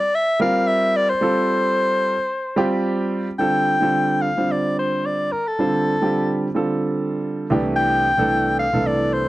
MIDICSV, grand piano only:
0, 0, Header, 1, 2, 480
1, 0, Start_track
1, 0, Tempo, 546448
1, 1065, Time_signature, 4, 2, 24, 8
1, 8156, End_track
2, 0, Start_track
2, 0, Title_t, "Grand piano"
2, 0, Program_c, 0, 0
2, 347, Note_on_c, 0, 55, 72
2, 354, Note_on_c, 0, 60, 66
2, 360, Note_on_c, 0, 65, 65
2, 360, Note_on_c, 0, 70, 83
2, 952, Note_off_c, 0, 55, 0
2, 955, Note_off_c, 0, 60, 0
2, 958, Note_off_c, 0, 70, 0
2, 959, Note_off_c, 0, 65, 0
2, 1063, Note_on_c, 0, 55, 64
2, 1067, Note_on_c, 0, 60, 62
2, 1070, Note_on_c, 0, 65, 64
2, 1077, Note_on_c, 0, 69, 77
2, 1871, Note_off_c, 0, 55, 0
2, 1873, Note_off_c, 0, 60, 0
2, 1874, Note_off_c, 0, 65, 0
2, 1878, Note_off_c, 0, 69, 0
2, 2251, Note_on_c, 0, 55, 82
2, 2256, Note_on_c, 0, 60, 75
2, 2262, Note_on_c, 0, 65, 73
2, 2263, Note_on_c, 0, 67, 94
2, 2864, Note_off_c, 0, 55, 0
2, 2866, Note_off_c, 0, 60, 0
2, 2869, Note_off_c, 0, 65, 0
2, 2870, Note_off_c, 0, 67, 0
2, 2975, Note_on_c, 0, 50, 61
2, 2981, Note_on_c, 0, 55, 55
2, 2986, Note_on_c, 0, 60, 57
2, 2991, Note_on_c, 0, 65, 55
2, 2991, Note_on_c, 0, 69, 71
2, 3283, Note_off_c, 0, 50, 0
2, 3286, Note_off_c, 0, 55, 0
2, 3288, Note_off_c, 0, 60, 0
2, 3291, Note_off_c, 0, 65, 0
2, 3291, Note_off_c, 0, 69, 0
2, 3339, Note_on_c, 0, 50, 65
2, 3346, Note_on_c, 0, 55, 55
2, 3350, Note_on_c, 0, 65, 55
2, 3351, Note_on_c, 0, 60, 54
2, 3360, Note_on_c, 0, 69, 68
2, 3744, Note_off_c, 0, 50, 0
2, 3748, Note_off_c, 0, 55, 0
2, 3750, Note_off_c, 0, 65, 0
2, 3751, Note_off_c, 0, 60, 0
2, 3755, Note_off_c, 0, 69, 0
2, 3834, Note_on_c, 0, 50, 51
2, 3839, Note_on_c, 0, 55, 49
2, 3845, Note_on_c, 0, 60, 51
2, 3847, Note_on_c, 0, 72, 62
2, 3851, Note_on_c, 0, 65, 53
2, 4635, Note_off_c, 0, 50, 0
2, 4638, Note_off_c, 0, 55, 0
2, 4641, Note_off_c, 0, 60, 0
2, 4642, Note_off_c, 0, 72, 0
2, 4644, Note_off_c, 0, 65, 0
2, 4909, Note_on_c, 0, 55, 60
2, 4910, Note_on_c, 0, 50, 61
2, 4917, Note_on_c, 0, 60, 59
2, 4918, Note_on_c, 0, 65, 54
2, 4922, Note_on_c, 0, 72, 72
2, 5210, Note_off_c, 0, 55, 0
2, 5211, Note_off_c, 0, 50, 0
2, 5214, Note_off_c, 0, 60, 0
2, 5215, Note_off_c, 0, 65, 0
2, 5217, Note_off_c, 0, 72, 0
2, 5281, Note_on_c, 0, 50, 61
2, 5285, Note_on_c, 0, 55, 62
2, 5289, Note_on_c, 0, 65, 57
2, 5291, Note_on_c, 0, 60, 54
2, 5294, Note_on_c, 0, 67, 63
2, 5676, Note_off_c, 0, 50, 0
2, 5678, Note_off_c, 0, 55, 0
2, 5680, Note_off_c, 0, 65, 0
2, 5681, Note_off_c, 0, 60, 0
2, 5682, Note_off_c, 0, 67, 0
2, 5749, Note_on_c, 0, 50, 63
2, 5753, Note_on_c, 0, 55, 57
2, 5755, Note_on_c, 0, 60, 54
2, 5758, Note_on_c, 0, 65, 61
2, 5764, Note_on_c, 0, 69, 80
2, 6553, Note_off_c, 0, 50, 0
2, 6555, Note_off_c, 0, 55, 0
2, 6555, Note_off_c, 0, 60, 0
2, 6557, Note_off_c, 0, 65, 0
2, 6560, Note_off_c, 0, 69, 0
2, 6588, Note_on_c, 0, 36, 80
2, 6589, Note_on_c, 0, 52, 73
2, 6596, Note_on_c, 0, 57, 75
2, 6601, Note_on_c, 0, 62, 75
2, 6602, Note_on_c, 0, 67, 86
2, 7091, Note_off_c, 0, 36, 0
2, 7091, Note_off_c, 0, 52, 0
2, 7094, Note_off_c, 0, 57, 0
2, 7097, Note_off_c, 0, 62, 0
2, 7098, Note_off_c, 0, 67, 0
2, 7178, Note_on_c, 0, 52, 60
2, 7181, Note_on_c, 0, 36, 65
2, 7188, Note_on_c, 0, 62, 65
2, 7191, Note_on_c, 0, 57, 59
2, 7194, Note_on_c, 0, 69, 74
2, 7584, Note_off_c, 0, 52, 0
2, 7586, Note_off_c, 0, 36, 0
2, 7589, Note_off_c, 0, 62, 0
2, 7591, Note_off_c, 0, 57, 0
2, 7592, Note_off_c, 0, 69, 0
2, 7666, Note_on_c, 0, 52, 58
2, 7669, Note_on_c, 0, 36, 63
2, 7673, Note_on_c, 0, 57, 57
2, 7675, Note_on_c, 0, 62, 52
2, 7679, Note_on_c, 0, 69, 70
2, 8156, Note_off_c, 0, 36, 0
2, 8156, Note_off_c, 0, 52, 0
2, 8156, Note_off_c, 0, 57, 0
2, 8156, Note_off_c, 0, 62, 0
2, 8156, Note_off_c, 0, 69, 0
2, 8156, End_track
0, 0, End_of_file